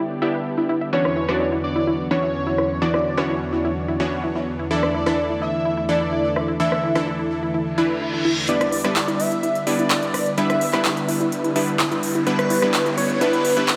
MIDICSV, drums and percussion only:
0, 0, Header, 1, 2, 480
1, 0, Start_track
1, 0, Tempo, 472441
1, 944, Time_signature, 4, 2, 24, 8
1, 13983, End_track
2, 0, Start_track
2, 0, Title_t, "Drums"
2, 1067, Note_on_c, 9, 37, 77
2, 1169, Note_off_c, 9, 37, 0
2, 1307, Note_on_c, 9, 37, 77
2, 1409, Note_off_c, 9, 37, 0
2, 2624, Note_on_c, 9, 37, 63
2, 2725, Note_off_c, 9, 37, 0
2, 2986, Note_on_c, 9, 37, 79
2, 3088, Note_off_c, 9, 37, 0
2, 3227, Note_on_c, 9, 37, 78
2, 3328, Note_off_c, 9, 37, 0
2, 4907, Note_on_c, 9, 37, 77
2, 5008, Note_off_c, 9, 37, 0
2, 5146, Note_on_c, 9, 37, 76
2, 5248, Note_off_c, 9, 37, 0
2, 6465, Note_on_c, 9, 37, 64
2, 6566, Note_off_c, 9, 37, 0
2, 6827, Note_on_c, 9, 37, 71
2, 6929, Note_off_c, 9, 37, 0
2, 7066, Note_on_c, 9, 37, 73
2, 7168, Note_off_c, 9, 37, 0
2, 8624, Note_on_c, 9, 42, 65
2, 8725, Note_off_c, 9, 42, 0
2, 8747, Note_on_c, 9, 37, 72
2, 8747, Note_on_c, 9, 42, 40
2, 8849, Note_off_c, 9, 37, 0
2, 8849, Note_off_c, 9, 42, 0
2, 8864, Note_on_c, 9, 46, 101
2, 8965, Note_off_c, 9, 46, 0
2, 8987, Note_on_c, 9, 37, 74
2, 8987, Note_on_c, 9, 42, 39
2, 9089, Note_off_c, 9, 37, 0
2, 9089, Note_off_c, 9, 42, 0
2, 9102, Note_on_c, 9, 39, 123
2, 9104, Note_on_c, 9, 42, 67
2, 9204, Note_off_c, 9, 39, 0
2, 9206, Note_off_c, 9, 42, 0
2, 9228, Note_on_c, 9, 42, 40
2, 9329, Note_off_c, 9, 42, 0
2, 9344, Note_on_c, 9, 46, 100
2, 9445, Note_off_c, 9, 46, 0
2, 9467, Note_on_c, 9, 42, 40
2, 9569, Note_off_c, 9, 42, 0
2, 9583, Note_on_c, 9, 42, 68
2, 9685, Note_off_c, 9, 42, 0
2, 9707, Note_on_c, 9, 42, 40
2, 9808, Note_off_c, 9, 42, 0
2, 9823, Note_on_c, 9, 46, 101
2, 9925, Note_off_c, 9, 46, 0
2, 9946, Note_on_c, 9, 42, 41
2, 10048, Note_off_c, 9, 42, 0
2, 10061, Note_on_c, 9, 39, 121
2, 10063, Note_on_c, 9, 42, 68
2, 10162, Note_off_c, 9, 39, 0
2, 10164, Note_off_c, 9, 42, 0
2, 10186, Note_on_c, 9, 42, 38
2, 10287, Note_off_c, 9, 42, 0
2, 10303, Note_on_c, 9, 37, 60
2, 10303, Note_on_c, 9, 46, 102
2, 10405, Note_off_c, 9, 37, 0
2, 10405, Note_off_c, 9, 46, 0
2, 10425, Note_on_c, 9, 42, 40
2, 10527, Note_off_c, 9, 42, 0
2, 10542, Note_on_c, 9, 42, 64
2, 10644, Note_off_c, 9, 42, 0
2, 10666, Note_on_c, 9, 37, 74
2, 10666, Note_on_c, 9, 42, 38
2, 10768, Note_off_c, 9, 37, 0
2, 10768, Note_off_c, 9, 42, 0
2, 10782, Note_on_c, 9, 46, 104
2, 10884, Note_off_c, 9, 46, 0
2, 10904, Note_on_c, 9, 39, 37
2, 10906, Note_on_c, 9, 37, 75
2, 10906, Note_on_c, 9, 42, 39
2, 11005, Note_off_c, 9, 39, 0
2, 11007, Note_off_c, 9, 37, 0
2, 11007, Note_off_c, 9, 42, 0
2, 11020, Note_on_c, 9, 39, 123
2, 11022, Note_on_c, 9, 42, 67
2, 11122, Note_off_c, 9, 39, 0
2, 11124, Note_off_c, 9, 42, 0
2, 11145, Note_on_c, 9, 42, 39
2, 11247, Note_off_c, 9, 42, 0
2, 11262, Note_on_c, 9, 46, 103
2, 11364, Note_off_c, 9, 46, 0
2, 11386, Note_on_c, 9, 42, 39
2, 11488, Note_off_c, 9, 42, 0
2, 11503, Note_on_c, 9, 42, 65
2, 11605, Note_off_c, 9, 42, 0
2, 11627, Note_on_c, 9, 42, 40
2, 11728, Note_off_c, 9, 42, 0
2, 11743, Note_on_c, 9, 46, 112
2, 11844, Note_off_c, 9, 46, 0
2, 11866, Note_on_c, 9, 42, 40
2, 11968, Note_off_c, 9, 42, 0
2, 11981, Note_on_c, 9, 39, 119
2, 11983, Note_on_c, 9, 42, 66
2, 12083, Note_off_c, 9, 39, 0
2, 12085, Note_off_c, 9, 42, 0
2, 12106, Note_on_c, 9, 42, 38
2, 12208, Note_off_c, 9, 42, 0
2, 12222, Note_on_c, 9, 46, 107
2, 12324, Note_off_c, 9, 46, 0
2, 12346, Note_on_c, 9, 42, 39
2, 12448, Note_off_c, 9, 42, 0
2, 12462, Note_on_c, 9, 42, 64
2, 12564, Note_off_c, 9, 42, 0
2, 12587, Note_on_c, 9, 37, 76
2, 12587, Note_on_c, 9, 42, 38
2, 12688, Note_off_c, 9, 37, 0
2, 12688, Note_off_c, 9, 42, 0
2, 12702, Note_on_c, 9, 46, 113
2, 12804, Note_off_c, 9, 46, 0
2, 12825, Note_on_c, 9, 37, 77
2, 12927, Note_off_c, 9, 37, 0
2, 12941, Note_on_c, 9, 39, 123
2, 12943, Note_on_c, 9, 42, 65
2, 13043, Note_off_c, 9, 39, 0
2, 13045, Note_off_c, 9, 42, 0
2, 13067, Note_on_c, 9, 42, 39
2, 13168, Note_off_c, 9, 42, 0
2, 13183, Note_on_c, 9, 46, 108
2, 13285, Note_off_c, 9, 46, 0
2, 13306, Note_on_c, 9, 42, 38
2, 13408, Note_off_c, 9, 42, 0
2, 13423, Note_on_c, 9, 42, 63
2, 13525, Note_off_c, 9, 42, 0
2, 13546, Note_on_c, 9, 42, 40
2, 13647, Note_off_c, 9, 42, 0
2, 13662, Note_on_c, 9, 46, 108
2, 13764, Note_off_c, 9, 46, 0
2, 13785, Note_on_c, 9, 42, 38
2, 13887, Note_off_c, 9, 42, 0
2, 13901, Note_on_c, 9, 39, 119
2, 13902, Note_on_c, 9, 42, 66
2, 13983, Note_off_c, 9, 39, 0
2, 13983, Note_off_c, 9, 42, 0
2, 13983, End_track
0, 0, End_of_file